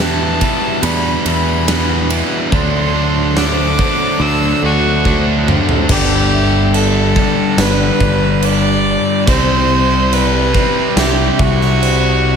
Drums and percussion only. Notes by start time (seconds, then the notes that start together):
0.41 kick, ride
0.83 ride
1.26 ride
1.68 snare, ride
2.10 ride
2.52 kick
3.37 snare
3.79 kick
5.05 kick
5.48 mid tom
5.69 floor tom
5.89 kick, crash
6.74 crash
7.16 kick
7.58 snare, crash
8.00 kick
8.42 crash
9.27 kick, crash
10.13 crash
10.55 kick
10.97 snare, crash
11.39 kick
11.61 snare
11.83 crash